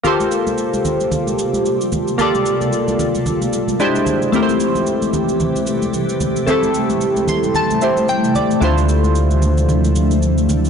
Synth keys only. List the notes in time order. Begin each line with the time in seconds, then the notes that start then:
0.03 A#3 F4 G4 A4 C5
2.18 A#3 F4 G4 A4 D5
3.80 G#3 D4 E4 G4 C5
4.32 A3 C4 E4 G4 A#4
4.43 C5
6.46 A3 C4 E4 G4 A4
7.29 C6
7.56 A5
7.82 A3 C4 E4 G4 C5
8.09 G5
8.36 D5
8.60 A3 D4 E4 F4 C5